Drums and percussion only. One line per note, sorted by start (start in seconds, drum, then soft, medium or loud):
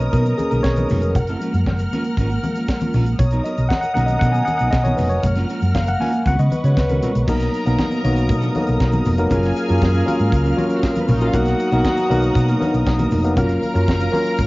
0.00 closed hi-hat soft
0.00 shaker medium
0.13 kick loud
0.13 closed hi-hat medium
0.13 shaker medium
0.26 closed hi-hat soft
0.26 muted conga soft
0.26 shaker medium
0.39 closed hi-hat medium
0.39 high conga medium
0.39 shaker medium
0.51 closed hi-hat soft
0.51 shaker soft
0.64 kick medium
0.64 snare loud
0.64 muted conga soft
0.64 shaker medium
0.76 closed hi-hat soft
0.76 high conga medium
0.76 shaker soft
0.89 open hi-hat medium
0.89 low conga medium
0.89 shaker medium
1.02 closed hi-hat medium
1.02 shaker medium
1.15 kick loud
1.15 closed hi-hat medium
1.15 low conga medium
1.15 shaker medium
1.27 closed hi-hat soft
1.27 muted conga soft
1.27 shaker soft
1.41 closed hi-hat medium
1.41 shaker soft
1.54 closed hi-hat soft
1.54 shaker soft
1.66 kick loud
1.66 snare loud
1.66 muted conga soft
1.66 high conga medium
1.66 shaker medium
1.79 closed hi-hat soft
1.79 muted conga soft
1.79 shaker medium
1.93 closed hi-hat medium
1.93 high conga medium
2.04 closed hi-hat soft
2.04 shaker medium
2.17 kick loud
2.17 closed hi-hat medium
2.17 shaker medium
2.30 closed hi-hat soft
2.30 shaker medium
2.43 closed hi-hat medium
2.43 high conga medium
2.43 shaker medium
2.55 closed hi-hat soft
2.55 shaker soft
2.68 kick loud
2.68 snare loud
2.68 shaker medium
2.81 closed hi-hat medium
2.81 high conga medium
2.81 shaker medium
2.93 open hi-hat medium
2.93 low conga medium
2.93 shaker medium
3.06 closed hi-hat medium
3.06 shaker medium
3.19 kick loud
3.19 closed hi-hat loud
3.19 muted conga soft
3.19 low conga medium
3.19 shaker medium
3.31 closed hi-hat soft
3.31 muted conga soft
3.31 shaker soft
3.45 closed hi-hat medium
3.45 shaker medium
3.57 closed hi-hat soft
3.57 shaker soft
3.70 kick loud
3.70 snare loud
3.70 muted conga soft
3.70 high conga medium
3.70 shaker medium
3.82 closed hi-hat soft
3.82 muted conga soft
3.82 shaker medium
3.97 closed hi-hat medium
3.97 high conga medium
4.08 closed hi-hat medium
4.08 shaker medium
4.21 kick loud
4.21 closed hi-hat medium
4.21 shaker medium
4.34 closed hi-hat soft
4.34 shaker medium
4.47 closed hi-hat medium
4.47 high conga medium
4.47 shaker medium
4.59 closed hi-hat soft
4.59 shaker medium
4.72 kick loud
4.72 snare loud
4.72 muted conga soft
4.72 shaker medium
4.84 closed hi-hat medium
4.84 muted conga soft
4.84 high conga medium
4.84 shaker soft
4.98 open hi-hat medium
4.98 low conga medium
4.98 shaker medium
5.10 closed hi-hat medium
5.10 shaker medium
5.23 kick loud
5.23 closed hi-hat loud
5.23 muted conga soft
5.23 low conga medium
5.23 shaker medium
5.35 snare soft
5.35 closed hi-hat soft
5.35 muted conga soft
5.35 shaker soft
5.49 closed hi-hat medium
5.49 shaker medium
5.62 closed hi-hat soft
5.62 shaker medium
5.75 kick loud
5.75 snare loud
5.75 muted conga soft
5.75 high conga medium
5.75 shaker medium
5.87 closed hi-hat soft
5.87 muted conga soft
5.87 shaker medium
6.01 open hi-hat medium
6.01 high conga medium
6.13 closed hi-hat soft
6.13 shaker medium
6.26 kick loud
6.26 closed hi-hat medium
6.26 muted conga soft
6.26 shaker medium
6.39 closed hi-hat soft
6.39 shaker medium
6.52 closed hi-hat medium
6.52 high conga medium
6.52 shaker medium
6.64 closed hi-hat soft
6.64 shaker medium
6.77 kick loud
6.77 snare loud
6.77 muted conga soft
6.77 shaker medium
6.89 closed hi-hat medium
6.89 high conga medium
6.89 shaker medium
7.02 closed hi-hat medium
7.02 low conga medium
7.02 shaker medium
7.15 closed hi-hat medium
7.15 shaker medium
7.28 kick loud
7.28 crash loud
7.28 low conga medium
7.28 shaker medium
7.39 snare soft
7.39 closed hi-hat medium
7.39 shaker medium
7.54 closed hi-hat medium
7.54 shaker medium
7.66 closed hi-hat soft
7.66 shaker medium
7.79 kick loud
7.79 snare loud
7.79 muted conga soft
7.79 high conga medium
7.79 shaker medium
7.90 closed hi-hat soft
7.90 shaker medium
8.04 closed hi-hat medium
8.04 high conga medium
8.16 closed hi-hat medium
8.16 shaker medium
8.29 kick loud
8.29 closed hi-hat medium
8.29 muted conga soft
8.29 shaker medium
8.42 closed hi-hat soft
8.42 muted conga soft
8.42 shaker medium
8.55 closed hi-hat medium
8.55 high conga medium
8.66 closed hi-hat soft
8.66 shaker medium
8.80 kick loud
8.80 snare loud
8.80 muted conga soft
8.80 shaker medium
8.92 closed hi-hat medium
8.92 muted conga soft
8.92 high conga medium
8.92 shaker soft
9.05 open hi-hat medium
9.05 low conga medium
9.05 shaker medium
9.18 closed hi-hat medium
9.18 shaker medium
9.30 kick loud
9.30 closed hi-hat loud
9.30 muted conga soft
9.30 low conga medium
9.30 shaker medium
9.43 snare soft
9.43 closed hi-hat soft
9.43 muted conga soft
9.43 shaker soft
9.56 closed hi-hat medium
9.56 shaker medium
9.68 closed hi-hat soft
9.68 shaker medium
9.81 kick loud
9.81 snare loud
9.81 high conga medium
9.81 shaker medium
9.93 closed hi-hat soft
9.93 shaker medium
10.08 closed hi-hat medium
10.08 high conga medium
10.19 closed hi-hat soft
10.19 shaker medium
10.32 kick loud
10.32 closed hi-hat medium
10.32 shaker medium
10.45 closed hi-hat soft
10.45 shaker medium
10.58 closed hi-hat medium
10.58 high conga medium
10.70 closed hi-hat soft
10.70 shaker medium
10.83 kick loud
10.83 snare loud
10.83 muted conga soft
10.83 shaker medium
10.95 closed hi-hat medium
10.95 high conga medium
10.95 shaker soft
11.08 open hi-hat medium
11.08 low conga medium
11.08 shaker medium
11.20 closed hi-hat medium
11.20 shaker medium
11.33 kick loud
11.33 closed hi-hat medium
11.33 muted conga soft
11.33 low conga medium
11.33 shaker medium
11.45 snare soft
11.45 closed hi-hat medium
11.45 shaker medium
11.59 closed hi-hat medium
11.59 shaker medium
11.72 closed hi-hat soft
11.72 shaker medium
11.84 kick loud
11.84 snare loud
11.84 muted conga soft
11.84 high conga medium
11.84 shaker medium
11.97 closed hi-hat medium
11.97 shaker medium
12.11 closed hi-hat medium
12.11 high conga medium
12.22 closed hi-hat soft
12.22 shaker medium
12.35 kick loud
12.35 closed hi-hat medium
12.35 shaker medium
12.48 closed hi-hat soft
12.48 muted conga soft
12.48 shaker medium
12.62 closed hi-hat medium
12.62 high conga medium
12.74 closed hi-hat soft
12.74 shaker medium
12.86 kick loud
12.86 snare loud
12.86 muted conga soft
12.86 shaker medium
12.99 closed hi-hat medium
12.99 high conga medium
12.99 shaker soft
13.11 open hi-hat medium
13.11 low conga medium
13.11 shaker medium
13.24 closed hi-hat medium
13.24 shaker medium
13.37 kick loud
13.37 closed hi-hat medium
13.37 muted conga soft
13.37 low conga medium
13.37 shaker medium
13.49 snare soft
13.49 closed hi-hat medium
13.49 shaker soft
13.63 closed hi-hat medium
13.63 high conga medium
13.63 shaker medium
13.75 closed hi-hat soft
13.75 shaker soft
13.88 kick loud
13.88 snare loud
13.88 high conga medium
13.88 shaker medium
14.00 closed hi-hat soft
14.00 shaker medium
14.13 open hi-hat medium
14.13 high conga medium
14.13 shaker medium
14.26 closed hi-hat soft
14.26 shaker medium
14.39 kick loud
14.39 closed hi-hat medium
14.39 muted conga soft
14.39 shaker medium